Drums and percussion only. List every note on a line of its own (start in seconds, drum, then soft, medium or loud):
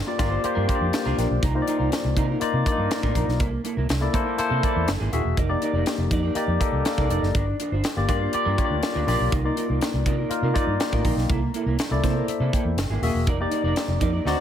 0.19 kick medium
0.19 snare soft
0.19 closed hi-hat medium
0.44 closed hi-hat medium
0.69 kick medium
0.69 closed hi-hat medium
0.93 snare loud
0.93 closed hi-hat medium
1.19 snare soft
1.19 closed hi-hat medium
1.43 kick loud
1.43 closed hi-hat medium
1.68 closed hi-hat medium
1.92 snare medium
1.92 closed hi-hat medium
2.17 kick medium
2.17 closed hi-hat medium
2.41 closed hi-hat medium
2.66 kick medium
2.66 closed hi-hat medium
2.91 snare medium
2.91 closed hi-hat medium
3.03 kick medium
3.15 kick medium
3.15 closed hi-hat medium
3.29 snare soft
3.40 kick loud
3.40 closed hi-hat medium
3.65 closed hi-hat medium
3.89 snare medium
3.89 closed hi-hat medium
4.14 kick medium
4.14 closed hi-hat medium
4.38 closed hi-hat medium
4.63 kick medium
4.63 closed hi-hat medium
4.88 snare loud
4.88 closed hi-hat medium
5.13 closed hi-hat medium
5.37 kick medium
5.37 closed hi-hat medium
5.62 closed hi-hat medium
5.86 snare medium
5.86 closed hi-hat medium
6.11 kick medium
6.11 closed hi-hat medium
6.35 closed hi-hat medium
6.61 kick medium
6.61 closed hi-hat medium
6.85 snare loud
6.85 closed hi-hat medium
6.98 kick medium
7.10 closed hi-hat medium
7.23 snare soft
7.35 kick loud
7.35 closed hi-hat medium
7.60 closed hi-hat medium
7.84 snare medium
7.84 closed hi-hat medium
8.09 kick medium
8.09 closed hi-hat medium
8.33 closed hi-hat medium
8.58 kick medium
8.58 closed hi-hat medium
8.83 snare loud
8.83 closed hi-hat medium
9.08 snare soft
9.08 open hi-hat medium
9.32 kick loud
9.32 closed hi-hat medium
9.57 closed hi-hat medium
9.81 snare medium
9.81 closed hi-hat medium
10.06 kick medium
10.06 closed hi-hat medium
10.31 closed hi-hat medium
10.56 kick medium
10.56 closed hi-hat medium
10.80 snare loud
10.80 closed hi-hat medium
10.93 kick medium
11.05 kick medium
11.05 open hi-hat medium
11.18 snare soft
11.30 kick loud
11.30 closed hi-hat medium
11.54 closed hi-hat medium
11.79 snare medium
11.79 closed hi-hat medium
12.04 kick medium
12.04 snare soft
12.04 closed hi-hat medium
12.28 closed hi-hat medium
12.53 kick medium
12.53 closed hi-hat medium
12.78 snare medium
12.78 closed hi-hat medium
13.03 open hi-hat medium
13.27 kick loud
13.27 closed hi-hat medium
13.52 closed hi-hat medium
13.76 snare loud
13.76 closed hi-hat medium
14.01 kick medium
14.01 closed hi-hat medium
14.27 snare soft